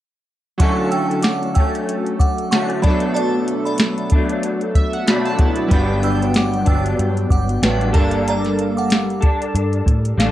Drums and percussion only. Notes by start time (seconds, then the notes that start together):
0.60 kick, closed hi-hat
0.92 closed hi-hat
1.11 closed hi-hat
1.22 snare, closed hi-hat
1.43 closed hi-hat
1.55 kick, closed hi-hat
1.75 closed hi-hat
1.89 closed hi-hat
2.06 closed hi-hat
2.20 kick, closed hi-hat
2.38 closed hi-hat
2.52 snare, closed hi-hat
2.70 closed hi-hat
2.84 kick, closed hi-hat
3.00 closed hi-hat
3.16 closed hi-hat
3.48 closed hi-hat
3.67 closed hi-hat
3.78 snare, closed hi-hat
3.98 closed hi-hat
4.10 kick, closed hi-hat
4.29 closed hi-hat
4.43 closed hi-hat
4.61 closed hi-hat
4.75 kick, closed hi-hat
4.93 closed hi-hat
5.07 snare, closed hi-hat
5.25 closed hi-hat
5.39 kick, closed hi-hat
5.56 closed hi-hat
5.71 kick, closed hi-hat
6.03 closed hi-hat
6.22 closed hi-hat
6.34 snare, closed hi-hat
6.54 closed hi-hat
6.66 kick, closed hi-hat
6.86 closed hi-hat
6.99 closed hi-hat
7.17 closed hi-hat
7.30 kick, closed hi-hat
7.49 closed hi-hat
7.63 snare, closed hi-hat
7.81 closed hi-hat
7.94 kick, closed hi-hat
8.11 closed hi-hat
8.28 closed hi-hat
8.45 snare, closed hi-hat
8.59 closed hi-hat
8.78 closed hi-hat
8.90 snare, closed hi-hat
9.10 closed hi-hat
9.22 kick, closed hi-hat
9.42 closed hi-hat
9.55 closed hi-hat
9.73 closed hi-hat
9.86 kick, closed hi-hat
10.05 closed hi-hat
10.20 snare, closed hi-hat